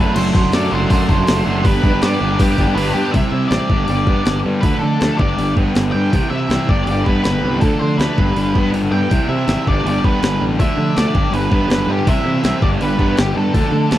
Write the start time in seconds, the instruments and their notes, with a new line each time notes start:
Already playing: distorted electric guitar F#3 A3, lead electric guitar B4
0.00 distorted electric guitar D4 F#4 A4
0.15 fingered electric bass F#1, distorted electric guitar F#3 A3 D4 F#4 A4, lead electric guitar C5, crash
0.34 fingered electric bass F#2, distorted electric guitar F#3 A3 D4 F#4 A4, kick
0.44 fingered electric bass F#1
0.52 fingered electric bass F#2, distorted electric guitar F#3 A3 D4 F#4 A4, lead electric guitar D5, snare, open hi-hat
0.70 fingered electric bass F#1, distorted electric guitar F#3 A3 D4 F#4 A4, lead electric guitar C5
0.89 fingered electric bass F#2, distorted electric guitar F#3 A3 D4 F#4 A4, lead electric guitar C5, kick, open hi-hat
1.08 fingered electric bass F#1, distorted electric guitar F#3 A3 D4 A4, kick
1.12 distorted electric guitar F#4
1.20 fingered electric bass F#2
1.27 fingered electric bass F#1, distorted electric guitar F#3 A3 D4 F#4 A4, snare, open hi-hat
1.44 fingered electric bass F#1, distorted electric guitar F#3 A3 D4 A4
1.49 distorted electric guitar F#4
1.63 fingered electric bass G1, distorted electric guitar G3 B3 D4 G4 B4, lead electric guitar B4, kick, open hi-hat
1.67 distorted electric guitar G4
1.82 fingered electric bass G2, distorted electric guitar G3 B3 D4 G4 B4, kick
1.93 fingered electric bass G1
2.01 fingered electric bass G2, distorted electric guitar G3 B3 D4 G4 B4, lead electric guitar D5, snare, open hi-hat
2.21 fingered electric bass G1, distorted electric guitar G3 B3 D4 G4 B4
2.39 fingered electric bass G2, distorted electric guitar G3 B3 D4 G4 B4, lead electric guitar G4, kick, open hi-hat
2.57 fingered electric bass G1, distorted electric guitar G3 B3 D4 G4 B4, kick
2.67 fingered electric bass G2
2.75 fingered electric bass G1, distorted electric guitar G3 B3 D4 G4 B4, lead electric guitar B4, open hi-hat
2.94 fingered electric bass G2, distorted electric guitar G3 B3 D4 G4 B4, lead electric guitar G4
3.11 fingered electric bass C2, distorted electric guitar C3 G3, lead electric guitar E5, kick, open hi-hat
3.16 distorted electric guitar C4 E4
3.32 fingered electric bass C3, distorted electric guitar G3 C4 E4
3.48 fingered electric bass A1, distorted electric guitar G3 C4, lead electric guitar D5, snare, open hi-hat
3.53 distorted electric guitar C4 E4
3.70 fingered electric bass G1, distorted electric guitar G2 B3 D4 G4, kick
3.84 distorted electric guitar G3, lead electric guitar D5, open hi-hat
3.89 fingered electric bass G1, distorted electric guitar B3 D4
4.07 fingered electric bass G2, distorted electric guitar B3 D4 G4, kick
4.26 fingered electric bass G1, distorted electric guitar D3 B3 D4, snare, open hi-hat
4.45 fingered electric bass G2, distorted electric guitar G3 B3 D4
4.61 fingered electric bass D2, distorted electric guitar D3 F3 A3 D4, lead electric guitar B4, kick, open hi-hat
4.79 fingered electric bass D3, distorted electric guitar F3 A3 D4, lead electric guitar A4
5.00 fingered electric bass D2, distorted electric guitar F3 A3 D4, snare, open hi-hat
5.17 fingered electric bass G1, distorted electric guitar G2 B3 D4 G4, lead electric guitar D5, kick
5.38 fingered electric bass G1, distorted electric guitar G3 B3 D4, open hi-hat
5.56 fingered electric bass G2, distorted electric guitar B3 D4 G4, kick
5.75 fingered electric bass G1, distorted electric guitar D3 B3 D4, snare, open hi-hat
5.92 fingered electric bass G2, distorted electric guitar G3 B3 D4, lead electric guitar G5
6.13 fingered electric bass C2, distorted electric guitar C3 E3 C4 E4, kick, open hi-hat
6.30 fingered electric bass C3, distorted electric guitar E3 C4 E4, lead electric guitar E5
6.49 fingered electric bass C2, distorted electric guitar E3 C4 E4, snare, open hi-hat
6.69 fingered electric bass G1, distorted electric guitar G2 B3 D4 G4, lead electric guitar D5, kick
6.87 fingered electric bass G1, distorted electric guitar G3 B3 D4, lead electric guitar D5, open hi-hat
7.04 fingered electric bass G2, distorted electric guitar B3 D4 G4, lead electric guitar B4, kick
7.24 fingered electric bass G1, distorted electric guitar D3 B3 D4, lead electric guitar B4, snare, open hi-hat
7.43 fingered electric bass C2, distorted electric guitar G3 B3 D4
7.61 fingered electric bass D2, distorted electric guitar D3 F3 A3 D4, lead electric guitar A4, kick, open hi-hat
7.79 fingered electric bass D3, distorted electric guitar F3 A3 D4, lead electric guitar C5
7.98 fingered electric bass D2, distorted electric guitar F3 A3 D4, lead electric guitar B4, snare, open hi-hat
8.18 fingered electric bass G1, distorted electric guitar G2 B3 D4 G4, kick
8.37 fingered electric bass G1, distorted electric guitar G3 B3 D4, open hi-hat
8.54 fingered electric bass G2, distorted electric guitar B3 D4 G4, kick
8.72 fingered electric bass G1, distorted electric guitar D3 B3 D4, open hi-hat
8.91 fingered electric bass G2, distorted electric guitar G3 B3 D4, lead electric guitar G5
9.11 fingered electric bass C2, distorted electric guitar C3 E3 C4 E4, kick, open hi-hat
9.29 fingered electric bass C3, distorted electric guitar E3 C4 E4, lead electric guitar E5
9.47 fingered electric bass G#1, distorted electric guitar E3 C4 E4, snare, open hi-hat
9.67 fingered electric bass G1, distorted electric guitar G2 B3 D4 G4, lead electric guitar D5, kick
9.85 fingered electric bass G1, distorted electric guitar G3 B3 D4, lead electric guitar D5, open hi-hat
10.04 fingered electric bass G2, distorted electric guitar B3 D4 G4, lead electric guitar B4, kick
10.23 fingered electric bass G1, distorted electric guitar D3 B3 D4, snare, open hi-hat
10.40 fingered electric bass A1, distorted electric guitar G3 B3 D4
10.59 fingered electric bass D2, distorted electric guitar D3 F3 A3 D4, lead electric guitar E5, kick, open hi-hat
10.77 fingered electric bass D3, distorted electric guitar F3 A3 D4
10.95 fingered electric bass D2, distorted electric guitar F3 A3 D4, lead electric guitar D5, snare, open hi-hat
11.14 fingered electric bass G1, distorted electric guitar G2 B3 D4 G4, kick
11.32 fingered electric bass G1, distorted electric guitar G3 B3 D4, lead electric guitar B4, open hi-hat
11.50 fingered electric bass G2, distorted electric guitar B3 D4 G4, kick
11.68 fingered electric bass G1, distorted electric guitar D3 B3 D4, lead electric guitar B4, snare, open hi-hat
11.87 fingered electric bass G2, distorted electric guitar G3 B3 D4
11.91 lead electric guitar G4
12.06 fingered electric bass C2, distorted electric guitar C3 E3 C4 E4, lead electric guitar E5, kick, open hi-hat
12.25 fingered electric bass C3, distorted electric guitar E3 C4 E4
12.43 fingered electric bass C2, distorted electric guitar E3 C4 E4, snare, open hi-hat
12.62 fingered electric bass G1, distorted electric guitar G2 B3 D4 G4, lead electric guitar D5, kick
12.80 fingered electric bass G1, distorted electric guitar G3 B3 D4, lead electric guitar B4, open hi-hat
12.98 fingered electric bass G2, distorted electric guitar B3 D4 G4, kick
13.09 lead electric guitar B4
13.17 fingered electric bass G1, distorted electric guitar D3 B3 D4, lead electric guitar G4, snare, open hi-hat
13.34 fingered electric bass G2, distorted electric guitar G3 B3 D4, lead electric guitar A4
13.54 fingered electric bass D2, distorted electric guitar D3 F3 A3 D4, kick, open hi-hat
13.72 fingered electric bass D3, distorted electric guitar F3 A3 D4
13.90 fingered electric bass D2, distorted electric guitar F3 A3 D4, snare, open hi-hat